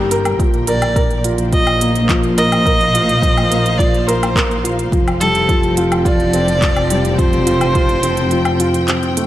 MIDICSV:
0, 0, Header, 1, 6, 480
1, 0, Start_track
1, 0, Tempo, 566038
1, 337, Time_signature, 4, 2, 24, 8
1, 7858, End_track
2, 0, Start_track
2, 0, Title_t, "Violin"
2, 0, Program_c, 0, 40
2, 0, Note_on_c, 0, 70, 92
2, 97, Note_off_c, 0, 70, 0
2, 573, Note_on_c, 0, 74, 117
2, 1021, Note_off_c, 0, 74, 0
2, 1297, Note_on_c, 0, 75, 117
2, 1744, Note_off_c, 0, 75, 0
2, 2017, Note_on_c, 0, 75, 127
2, 3203, Note_on_c, 0, 74, 108
2, 3215, Note_off_c, 0, 75, 0
2, 3448, Note_on_c, 0, 72, 95
2, 3460, Note_off_c, 0, 74, 0
2, 3932, Note_off_c, 0, 72, 0
2, 4414, Note_on_c, 0, 69, 123
2, 4862, Note_off_c, 0, 69, 0
2, 5135, Note_on_c, 0, 74, 124
2, 6087, Note_on_c, 0, 72, 118
2, 6100, Note_off_c, 0, 74, 0
2, 7532, Note_off_c, 0, 72, 0
2, 7858, End_track
3, 0, Start_track
3, 0, Title_t, "String section"
3, 0, Program_c, 1, 48
3, 0, Note_on_c, 1, 50, 88
3, 0, Note_on_c, 1, 55, 89
3, 0, Note_on_c, 1, 70, 70
3, 0, Note_on_c, 1, 79, 90
3, 334, Note_on_c, 1, 46, 72
3, 336, Note_off_c, 1, 55, 0
3, 567, Note_on_c, 1, 58, 92
3, 1164, Note_on_c, 1, 72, 74
3, 1355, Note_off_c, 1, 79, 0
3, 1567, Note_on_c, 1, 77, 76
3, 1604, Note_off_c, 1, 50, 0
3, 1675, Note_off_c, 1, 70, 0
3, 4174, Note_on_c, 1, 53, 100
3, 4175, Note_off_c, 1, 46, 0
3, 4176, Note_off_c, 1, 58, 0
3, 4430, Note_on_c, 1, 60, 81
3, 4457, Note_on_c, 1, 79, 87
3, 4881, Note_on_c, 1, 69, 66
3, 5045, Note_off_c, 1, 77, 0
3, 5714, Note_off_c, 1, 72, 0
3, 7858, Note_off_c, 1, 53, 0
3, 7858, Note_off_c, 1, 60, 0
3, 7858, Note_off_c, 1, 69, 0
3, 7858, Note_off_c, 1, 79, 0
3, 7858, End_track
4, 0, Start_track
4, 0, Title_t, "Felt piano"
4, 0, Program_c, 2, 0
4, 0, Control_c, 2, 64, 127
4, 0, Note_on_c, 2, 55, 105
4, 0, Note_on_c, 2, 58, 72
4, 0, Note_on_c, 2, 67, 73
4, 0, Note_on_c, 2, 70, 96
4, 97, Note_off_c, 2, 70, 0
4, 97, Note_on_c, 2, 70, 97
4, 325, Note_off_c, 2, 70, 0
4, 333, Note_on_c, 2, 53, 107
4, 347, Note_off_c, 2, 55, 0
4, 347, Control_c, 2, 64, 0
4, 352, Note_off_c, 2, 67, 0
4, 354, Note_off_c, 2, 58, 0
4, 513, Control_c, 2, 64, 127
4, 563, Note_off_c, 2, 53, 0
4, 574, Note_on_c, 2, 70, 93
4, 800, Note_off_c, 2, 70, 0
4, 812, Note_on_c, 2, 70, 104
4, 1043, Note_off_c, 2, 70, 0
4, 1055, Note_on_c, 2, 65, 71
4, 1193, Note_off_c, 2, 65, 0
4, 1300, Note_on_c, 2, 53, 78
4, 1435, Note_off_c, 2, 53, 0
4, 1539, Note_on_c, 2, 58, 78
4, 1675, Note_off_c, 2, 58, 0
4, 1778, Note_on_c, 2, 53, 105
4, 2006, Note_off_c, 2, 53, 0
4, 2017, Note_on_c, 2, 70, 102
4, 2242, Note_off_c, 2, 70, 0
4, 2255, Note_on_c, 2, 70, 100
4, 2484, Note_off_c, 2, 70, 0
4, 2499, Note_on_c, 2, 65, 70
4, 2635, Note_off_c, 2, 65, 0
4, 2736, Note_on_c, 2, 53, 78
4, 2873, Note_off_c, 2, 53, 0
4, 2973, Note_on_c, 2, 58, 71
4, 3112, Note_off_c, 2, 58, 0
4, 3214, Note_on_c, 2, 53, 99
4, 3443, Note_off_c, 2, 53, 0
4, 3459, Note_on_c, 2, 70, 105
4, 3684, Note_off_c, 2, 70, 0
4, 3697, Note_on_c, 2, 70, 106
4, 3925, Note_off_c, 2, 70, 0
4, 3935, Note_on_c, 2, 65, 80
4, 4073, Note_off_c, 2, 65, 0
4, 4181, Note_on_c, 2, 53, 86
4, 4190, Control_c, 2, 64, 0
4, 4316, Note_off_c, 2, 53, 0
4, 4339, Control_c, 2, 64, 127
4, 4420, Note_on_c, 2, 55, 81
4, 4555, Note_off_c, 2, 55, 0
4, 4660, Note_on_c, 2, 53, 103
4, 4886, Note_off_c, 2, 53, 0
4, 4899, Note_on_c, 2, 65, 99
4, 5117, Note_off_c, 2, 65, 0
4, 5130, Note_on_c, 2, 65, 102
4, 5362, Note_off_c, 2, 65, 0
4, 5373, Note_on_c, 2, 60, 83
4, 5512, Note_off_c, 2, 60, 0
4, 5613, Note_on_c, 2, 53, 78
4, 5752, Note_off_c, 2, 53, 0
4, 5852, Note_on_c, 2, 55, 84
4, 5992, Note_off_c, 2, 55, 0
4, 6092, Note_on_c, 2, 53, 110
4, 6322, Note_off_c, 2, 53, 0
4, 6329, Note_on_c, 2, 65, 99
4, 6559, Note_off_c, 2, 65, 0
4, 6572, Note_on_c, 2, 65, 104
4, 6802, Note_off_c, 2, 65, 0
4, 6814, Note_on_c, 2, 60, 77
4, 6952, Note_off_c, 2, 60, 0
4, 7052, Note_on_c, 2, 53, 84
4, 7191, Note_off_c, 2, 53, 0
4, 7292, Note_on_c, 2, 65, 80
4, 7522, Note_off_c, 2, 65, 0
4, 7534, Note_on_c, 2, 60, 85
4, 7764, Note_off_c, 2, 60, 0
4, 7776, Note_on_c, 2, 57, 81
4, 7858, Note_off_c, 2, 57, 0
4, 7858, End_track
5, 0, Start_track
5, 0, Title_t, "Double bass section"
5, 0, Program_c, 3, 48
5, 0, Note_on_c, 3, 31, 96
5, 312, Note_off_c, 3, 31, 0
5, 334, Note_on_c, 3, 34, 94
5, 4151, Note_off_c, 3, 34, 0
5, 4174, Note_on_c, 3, 29, 95
5, 7858, Note_off_c, 3, 29, 0
5, 7858, End_track
6, 0, Start_track
6, 0, Title_t, "Drums"
6, 95, Note_on_c, 9, 42, 81
6, 180, Note_off_c, 9, 42, 0
6, 215, Note_on_c, 9, 42, 33
6, 215, Note_on_c, 9, 77, 67
6, 300, Note_off_c, 9, 42, 0
6, 300, Note_off_c, 9, 77, 0
6, 335, Note_on_c, 9, 36, 106
6, 338, Note_on_c, 9, 42, 42
6, 420, Note_off_c, 9, 36, 0
6, 423, Note_off_c, 9, 42, 0
6, 455, Note_on_c, 9, 42, 21
6, 540, Note_off_c, 9, 42, 0
6, 571, Note_on_c, 9, 42, 77
6, 656, Note_off_c, 9, 42, 0
6, 695, Note_on_c, 9, 42, 32
6, 695, Note_on_c, 9, 77, 66
6, 780, Note_off_c, 9, 42, 0
6, 780, Note_off_c, 9, 77, 0
6, 814, Note_on_c, 9, 36, 107
6, 817, Note_on_c, 9, 42, 42
6, 899, Note_off_c, 9, 36, 0
6, 902, Note_off_c, 9, 42, 0
6, 937, Note_on_c, 9, 42, 21
6, 1022, Note_off_c, 9, 42, 0
6, 1055, Note_on_c, 9, 42, 80
6, 1140, Note_off_c, 9, 42, 0
6, 1172, Note_on_c, 9, 42, 33
6, 1257, Note_off_c, 9, 42, 0
6, 1294, Note_on_c, 9, 36, 98
6, 1294, Note_on_c, 9, 42, 44
6, 1378, Note_off_c, 9, 42, 0
6, 1379, Note_off_c, 9, 36, 0
6, 1414, Note_on_c, 9, 42, 21
6, 1414, Note_on_c, 9, 77, 63
6, 1499, Note_off_c, 9, 42, 0
6, 1499, Note_off_c, 9, 77, 0
6, 1537, Note_on_c, 9, 42, 76
6, 1622, Note_off_c, 9, 42, 0
6, 1658, Note_on_c, 9, 42, 32
6, 1742, Note_off_c, 9, 42, 0
6, 1773, Note_on_c, 9, 36, 106
6, 1774, Note_on_c, 9, 39, 72
6, 1774, Note_on_c, 9, 42, 41
6, 1857, Note_off_c, 9, 36, 0
6, 1859, Note_off_c, 9, 39, 0
6, 1859, Note_off_c, 9, 42, 0
6, 1895, Note_on_c, 9, 42, 21
6, 1979, Note_off_c, 9, 42, 0
6, 2017, Note_on_c, 9, 42, 76
6, 2102, Note_off_c, 9, 42, 0
6, 2139, Note_on_c, 9, 42, 32
6, 2139, Note_on_c, 9, 77, 66
6, 2224, Note_off_c, 9, 42, 0
6, 2224, Note_off_c, 9, 77, 0
6, 2254, Note_on_c, 9, 36, 101
6, 2260, Note_on_c, 9, 42, 37
6, 2338, Note_off_c, 9, 36, 0
6, 2345, Note_off_c, 9, 42, 0
6, 2380, Note_on_c, 9, 42, 22
6, 2465, Note_off_c, 9, 42, 0
6, 2501, Note_on_c, 9, 42, 78
6, 2586, Note_off_c, 9, 42, 0
6, 2622, Note_on_c, 9, 42, 30
6, 2707, Note_off_c, 9, 42, 0
6, 2734, Note_on_c, 9, 36, 102
6, 2742, Note_on_c, 9, 42, 42
6, 2819, Note_off_c, 9, 36, 0
6, 2826, Note_off_c, 9, 42, 0
6, 2862, Note_on_c, 9, 42, 19
6, 2862, Note_on_c, 9, 77, 64
6, 2946, Note_off_c, 9, 42, 0
6, 2946, Note_off_c, 9, 77, 0
6, 2982, Note_on_c, 9, 42, 75
6, 3066, Note_off_c, 9, 42, 0
6, 3102, Note_on_c, 9, 42, 30
6, 3187, Note_off_c, 9, 42, 0
6, 3215, Note_on_c, 9, 36, 99
6, 3224, Note_on_c, 9, 42, 46
6, 3299, Note_off_c, 9, 36, 0
6, 3309, Note_off_c, 9, 42, 0
6, 3344, Note_on_c, 9, 42, 20
6, 3429, Note_off_c, 9, 42, 0
6, 3465, Note_on_c, 9, 42, 74
6, 3550, Note_off_c, 9, 42, 0
6, 3587, Note_on_c, 9, 42, 33
6, 3587, Note_on_c, 9, 77, 68
6, 3671, Note_off_c, 9, 42, 0
6, 3671, Note_off_c, 9, 77, 0
6, 3694, Note_on_c, 9, 36, 108
6, 3707, Note_on_c, 9, 39, 74
6, 3707, Note_on_c, 9, 42, 40
6, 3779, Note_off_c, 9, 36, 0
6, 3792, Note_off_c, 9, 39, 0
6, 3792, Note_off_c, 9, 42, 0
6, 3826, Note_on_c, 9, 42, 20
6, 3911, Note_off_c, 9, 42, 0
6, 3944, Note_on_c, 9, 42, 72
6, 4028, Note_off_c, 9, 42, 0
6, 4063, Note_on_c, 9, 42, 31
6, 4147, Note_off_c, 9, 42, 0
6, 4174, Note_on_c, 9, 36, 103
6, 4182, Note_on_c, 9, 42, 37
6, 4259, Note_off_c, 9, 36, 0
6, 4266, Note_off_c, 9, 42, 0
6, 4304, Note_on_c, 9, 42, 22
6, 4304, Note_on_c, 9, 77, 74
6, 4389, Note_off_c, 9, 42, 0
6, 4389, Note_off_c, 9, 77, 0
6, 4419, Note_on_c, 9, 42, 71
6, 4503, Note_off_c, 9, 42, 0
6, 4536, Note_on_c, 9, 42, 31
6, 4621, Note_off_c, 9, 42, 0
6, 4654, Note_on_c, 9, 36, 102
6, 4656, Note_on_c, 9, 42, 41
6, 4739, Note_off_c, 9, 36, 0
6, 4740, Note_off_c, 9, 42, 0
6, 4777, Note_on_c, 9, 42, 21
6, 4862, Note_off_c, 9, 42, 0
6, 4894, Note_on_c, 9, 42, 72
6, 4979, Note_off_c, 9, 42, 0
6, 5018, Note_on_c, 9, 42, 30
6, 5018, Note_on_c, 9, 77, 70
6, 5103, Note_off_c, 9, 42, 0
6, 5103, Note_off_c, 9, 77, 0
6, 5133, Note_on_c, 9, 36, 104
6, 5138, Note_on_c, 9, 42, 43
6, 5218, Note_off_c, 9, 36, 0
6, 5222, Note_off_c, 9, 42, 0
6, 5256, Note_on_c, 9, 42, 20
6, 5341, Note_off_c, 9, 42, 0
6, 5372, Note_on_c, 9, 42, 70
6, 5457, Note_off_c, 9, 42, 0
6, 5497, Note_on_c, 9, 42, 31
6, 5582, Note_off_c, 9, 42, 0
6, 5613, Note_on_c, 9, 36, 101
6, 5616, Note_on_c, 9, 39, 67
6, 5616, Note_on_c, 9, 42, 41
6, 5698, Note_off_c, 9, 36, 0
6, 5701, Note_off_c, 9, 39, 0
6, 5701, Note_off_c, 9, 42, 0
6, 5736, Note_on_c, 9, 42, 19
6, 5736, Note_on_c, 9, 77, 69
6, 5821, Note_off_c, 9, 42, 0
6, 5821, Note_off_c, 9, 77, 0
6, 5854, Note_on_c, 9, 42, 76
6, 5939, Note_off_c, 9, 42, 0
6, 5977, Note_on_c, 9, 42, 31
6, 6062, Note_off_c, 9, 42, 0
6, 6093, Note_on_c, 9, 36, 107
6, 6096, Note_on_c, 9, 42, 41
6, 6178, Note_off_c, 9, 36, 0
6, 6181, Note_off_c, 9, 42, 0
6, 6216, Note_on_c, 9, 42, 22
6, 6301, Note_off_c, 9, 42, 0
6, 6334, Note_on_c, 9, 42, 79
6, 6418, Note_off_c, 9, 42, 0
6, 6454, Note_on_c, 9, 42, 31
6, 6454, Note_on_c, 9, 77, 69
6, 6539, Note_off_c, 9, 42, 0
6, 6539, Note_off_c, 9, 77, 0
6, 6573, Note_on_c, 9, 36, 104
6, 6573, Note_on_c, 9, 42, 41
6, 6657, Note_off_c, 9, 42, 0
6, 6658, Note_off_c, 9, 36, 0
6, 6691, Note_on_c, 9, 42, 21
6, 6776, Note_off_c, 9, 42, 0
6, 6810, Note_on_c, 9, 42, 77
6, 6895, Note_off_c, 9, 42, 0
6, 6930, Note_on_c, 9, 42, 32
6, 7014, Note_off_c, 9, 42, 0
6, 7047, Note_on_c, 9, 42, 44
6, 7132, Note_off_c, 9, 42, 0
6, 7168, Note_on_c, 9, 42, 21
6, 7168, Note_on_c, 9, 77, 71
6, 7253, Note_off_c, 9, 42, 0
6, 7253, Note_off_c, 9, 77, 0
6, 7291, Note_on_c, 9, 42, 74
6, 7376, Note_off_c, 9, 42, 0
6, 7414, Note_on_c, 9, 42, 33
6, 7499, Note_off_c, 9, 42, 0
6, 7532, Note_on_c, 9, 39, 76
6, 7532, Note_on_c, 9, 42, 41
6, 7616, Note_off_c, 9, 39, 0
6, 7616, Note_off_c, 9, 42, 0
6, 7656, Note_on_c, 9, 42, 20
6, 7741, Note_off_c, 9, 42, 0
6, 7776, Note_on_c, 9, 42, 77
6, 7858, Note_off_c, 9, 42, 0
6, 7858, End_track
0, 0, End_of_file